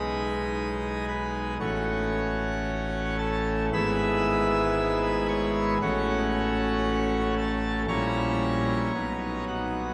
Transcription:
0, 0, Header, 1, 2, 480
1, 0, Start_track
1, 0, Tempo, 1056338
1, 735, Time_signature, 4, 2, 24, 8
1, 1702, Tempo, 1039861
1, 4102, Tempo, 1081081
1, 4542, End_track
2, 0, Start_track
2, 0, Title_t, "Pipe organ"
2, 0, Program_c, 0, 19
2, 0, Note_on_c, 0, 35, 60
2, 0, Note_on_c, 0, 47, 55
2, 0, Note_on_c, 0, 56, 49
2, 0, Note_on_c, 0, 63, 47
2, 0, Note_on_c, 0, 68, 42
2, 0, Note_on_c, 0, 75, 69
2, 0, Note_on_c, 0, 83, 75
2, 0, Note_on_c, 0, 87, 92
2, 476, Note_off_c, 0, 75, 0
2, 476, Note_off_c, 0, 87, 0
2, 477, Note_off_c, 0, 83, 0
2, 492, Note_on_c, 0, 83, 81
2, 494, Note_on_c, 0, 71, 57
2, 697, Note_off_c, 0, 83, 0
2, 698, Note_off_c, 0, 71, 0
2, 714, Note_off_c, 0, 35, 0
2, 714, Note_off_c, 0, 68, 0
2, 715, Note_off_c, 0, 47, 0
2, 715, Note_off_c, 0, 56, 0
2, 715, Note_off_c, 0, 63, 0
2, 727, Note_on_c, 0, 78, 91
2, 728, Note_on_c, 0, 33, 54
2, 728, Note_on_c, 0, 57, 46
2, 728, Note_on_c, 0, 61, 43
2, 729, Note_on_c, 0, 45, 58
2, 729, Note_on_c, 0, 73, 67
2, 731, Note_on_c, 0, 66, 66
2, 1436, Note_off_c, 0, 78, 0
2, 1437, Note_off_c, 0, 73, 0
2, 1438, Note_off_c, 0, 66, 0
2, 1446, Note_on_c, 0, 69, 82
2, 1449, Note_on_c, 0, 81, 108
2, 1659, Note_off_c, 0, 69, 0
2, 1660, Note_off_c, 0, 81, 0
2, 1680, Note_off_c, 0, 33, 0
2, 1680, Note_off_c, 0, 57, 0
2, 1680, Note_off_c, 0, 61, 0
2, 1681, Note_off_c, 0, 45, 0
2, 1694, Note_on_c, 0, 59, 58
2, 1695, Note_on_c, 0, 32, 66
2, 1695, Note_on_c, 0, 44, 73
2, 1695, Note_on_c, 0, 76, 89
2, 1696, Note_on_c, 0, 64, 59
2, 1696, Note_on_c, 0, 83, 86
2, 1697, Note_on_c, 0, 68, 56
2, 1697, Note_on_c, 0, 88, 116
2, 2401, Note_off_c, 0, 76, 0
2, 2401, Note_off_c, 0, 83, 0
2, 2402, Note_off_c, 0, 88, 0
2, 2413, Note_on_c, 0, 73, 77
2, 2413, Note_on_c, 0, 85, 109
2, 2620, Note_off_c, 0, 73, 0
2, 2620, Note_off_c, 0, 85, 0
2, 2639, Note_off_c, 0, 32, 0
2, 2639, Note_off_c, 0, 44, 0
2, 2639, Note_off_c, 0, 59, 0
2, 2640, Note_off_c, 0, 64, 0
2, 2640, Note_off_c, 0, 68, 0
2, 2658, Note_on_c, 0, 61, 51
2, 2659, Note_on_c, 0, 33, 61
2, 2659, Note_on_c, 0, 45, 65
2, 2659, Note_on_c, 0, 78, 118
2, 2661, Note_on_c, 0, 57, 53
2, 2661, Note_on_c, 0, 66, 73
2, 2663, Note_on_c, 0, 73, 69
2, 3360, Note_off_c, 0, 78, 0
2, 3361, Note_off_c, 0, 66, 0
2, 3362, Note_off_c, 0, 73, 0
2, 3380, Note_on_c, 0, 69, 84
2, 3380, Note_on_c, 0, 81, 111
2, 3582, Note_off_c, 0, 69, 0
2, 3582, Note_off_c, 0, 81, 0
2, 3597, Note_off_c, 0, 61, 0
2, 3598, Note_off_c, 0, 33, 0
2, 3598, Note_off_c, 0, 45, 0
2, 3599, Note_off_c, 0, 57, 0
2, 3612, Note_on_c, 0, 55, 57
2, 3612, Note_on_c, 0, 82, 76
2, 3613, Note_on_c, 0, 85, 113
2, 3614, Note_on_c, 0, 34, 67
2, 3614, Note_on_c, 0, 64, 56
2, 3615, Note_on_c, 0, 46, 72
2, 3616, Note_on_c, 0, 61, 58
2, 3616, Note_on_c, 0, 73, 88
2, 4085, Note_off_c, 0, 55, 0
2, 4086, Note_off_c, 0, 34, 0
2, 4086, Note_off_c, 0, 64, 0
2, 4087, Note_off_c, 0, 46, 0
2, 4087, Note_off_c, 0, 61, 0
2, 4102, Note_on_c, 0, 54, 46
2, 4103, Note_on_c, 0, 47, 58
2, 4103, Note_on_c, 0, 59, 51
2, 4104, Note_on_c, 0, 35, 57
2, 4104, Note_on_c, 0, 63, 51
2, 4321, Note_off_c, 0, 82, 0
2, 4321, Note_off_c, 0, 85, 0
2, 4322, Note_off_c, 0, 73, 0
2, 4340, Note_on_c, 0, 66, 52
2, 4340, Note_on_c, 0, 78, 65
2, 4542, Note_off_c, 0, 35, 0
2, 4542, Note_off_c, 0, 47, 0
2, 4542, Note_off_c, 0, 54, 0
2, 4542, Note_off_c, 0, 59, 0
2, 4542, Note_off_c, 0, 63, 0
2, 4542, Note_off_c, 0, 66, 0
2, 4542, Note_off_c, 0, 78, 0
2, 4542, End_track
0, 0, End_of_file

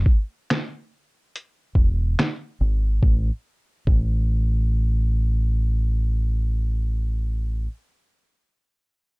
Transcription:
0, 0, Header, 1, 3, 480
1, 0, Start_track
1, 0, Tempo, 845070
1, 1719, Time_signature, 4, 2, 24, 8
1, 5222, End_track
2, 0, Start_track
2, 0, Title_t, "Fingered electric bass"
2, 0, Program_c, 0, 33
2, 996, Note_on_c, 0, 28, 79
2, 1216, Note_off_c, 0, 28, 0
2, 1480, Note_on_c, 0, 32, 83
2, 1698, Note_off_c, 0, 32, 0
2, 1719, Note_on_c, 0, 33, 87
2, 1871, Note_off_c, 0, 33, 0
2, 2198, Note_on_c, 0, 33, 87
2, 4352, Note_off_c, 0, 33, 0
2, 5222, End_track
3, 0, Start_track
3, 0, Title_t, "Drums"
3, 34, Note_on_c, 9, 36, 80
3, 91, Note_off_c, 9, 36, 0
3, 286, Note_on_c, 9, 26, 94
3, 288, Note_on_c, 9, 42, 56
3, 289, Note_on_c, 9, 38, 102
3, 343, Note_off_c, 9, 26, 0
3, 345, Note_off_c, 9, 38, 0
3, 345, Note_off_c, 9, 42, 0
3, 770, Note_on_c, 9, 42, 80
3, 827, Note_off_c, 9, 42, 0
3, 995, Note_on_c, 9, 36, 78
3, 1052, Note_off_c, 9, 36, 0
3, 1243, Note_on_c, 9, 26, 72
3, 1243, Note_on_c, 9, 42, 58
3, 1246, Note_on_c, 9, 38, 84
3, 1300, Note_off_c, 9, 26, 0
3, 1300, Note_off_c, 9, 42, 0
3, 1303, Note_off_c, 9, 38, 0
3, 1719, Note_on_c, 9, 36, 91
3, 1776, Note_off_c, 9, 36, 0
3, 2199, Note_on_c, 9, 36, 85
3, 2255, Note_off_c, 9, 36, 0
3, 5222, End_track
0, 0, End_of_file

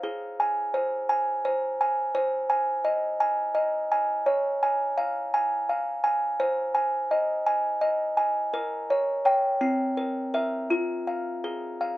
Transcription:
0, 0, Header, 1, 2, 480
1, 0, Start_track
1, 0, Tempo, 705053
1, 37, Time_signature, 6, 3, 24, 8
1, 4836, Tempo, 722892
1, 8071, End_track
2, 0, Start_track
2, 0, Title_t, "Music box"
2, 0, Program_c, 0, 10
2, 23, Note_on_c, 0, 68, 59
2, 271, Note_on_c, 0, 80, 62
2, 504, Note_on_c, 0, 72, 58
2, 656, Note_off_c, 0, 80, 0
2, 744, Note_on_c, 0, 80, 67
2, 892, Note_off_c, 0, 72, 0
2, 987, Note_on_c, 0, 72, 54
2, 1131, Note_off_c, 0, 80, 0
2, 1231, Note_on_c, 0, 80, 64
2, 1372, Note_off_c, 0, 72, 0
2, 1436, Note_off_c, 0, 68, 0
2, 1462, Note_on_c, 0, 72, 78
2, 1470, Note_off_c, 0, 80, 0
2, 1699, Note_on_c, 0, 80, 65
2, 1937, Note_on_c, 0, 75, 63
2, 2088, Note_off_c, 0, 80, 0
2, 2181, Note_on_c, 0, 80, 65
2, 2327, Note_off_c, 0, 75, 0
2, 2415, Note_on_c, 0, 75, 55
2, 2569, Note_off_c, 0, 80, 0
2, 2666, Note_on_c, 0, 80, 69
2, 2806, Note_off_c, 0, 75, 0
2, 2878, Note_off_c, 0, 72, 0
2, 2902, Note_on_c, 0, 73, 73
2, 2908, Note_off_c, 0, 80, 0
2, 3150, Note_on_c, 0, 80, 71
2, 3387, Note_on_c, 0, 77, 65
2, 3535, Note_off_c, 0, 80, 0
2, 3635, Note_on_c, 0, 80, 70
2, 3774, Note_off_c, 0, 77, 0
2, 3876, Note_on_c, 0, 77, 61
2, 4019, Note_off_c, 0, 80, 0
2, 4111, Note_on_c, 0, 80, 61
2, 4261, Note_off_c, 0, 77, 0
2, 4324, Note_off_c, 0, 73, 0
2, 4353, Note_off_c, 0, 80, 0
2, 4356, Note_on_c, 0, 72, 77
2, 4593, Note_on_c, 0, 80, 63
2, 4841, Note_on_c, 0, 75, 62
2, 4977, Note_off_c, 0, 80, 0
2, 5076, Note_on_c, 0, 80, 66
2, 5218, Note_off_c, 0, 75, 0
2, 5307, Note_on_c, 0, 75, 55
2, 5454, Note_off_c, 0, 80, 0
2, 5546, Note_on_c, 0, 80, 62
2, 5689, Note_off_c, 0, 75, 0
2, 5760, Note_off_c, 0, 72, 0
2, 5785, Note_off_c, 0, 80, 0
2, 5787, Note_on_c, 0, 70, 76
2, 6031, Note_on_c, 0, 73, 58
2, 6255, Note_off_c, 0, 73, 0
2, 6263, Note_on_c, 0, 73, 52
2, 6266, Note_on_c, 0, 79, 60
2, 6478, Note_off_c, 0, 73, 0
2, 6480, Note_off_c, 0, 79, 0
2, 6482, Note_off_c, 0, 70, 0
2, 6500, Note_on_c, 0, 60, 64
2, 6742, Note_on_c, 0, 70, 52
2, 6976, Note_off_c, 0, 70, 0
2, 6984, Note_on_c, 0, 70, 49
2, 6988, Note_on_c, 0, 76, 54
2, 7203, Note_off_c, 0, 70, 0
2, 7204, Note_off_c, 0, 60, 0
2, 7205, Note_off_c, 0, 76, 0
2, 7226, Note_on_c, 0, 65, 63
2, 7472, Note_on_c, 0, 77, 52
2, 7716, Note_on_c, 0, 68, 54
2, 7861, Note_off_c, 0, 77, 0
2, 7960, Note_on_c, 0, 77, 51
2, 8071, Note_off_c, 0, 65, 0
2, 8071, Note_off_c, 0, 68, 0
2, 8071, Note_off_c, 0, 77, 0
2, 8071, End_track
0, 0, End_of_file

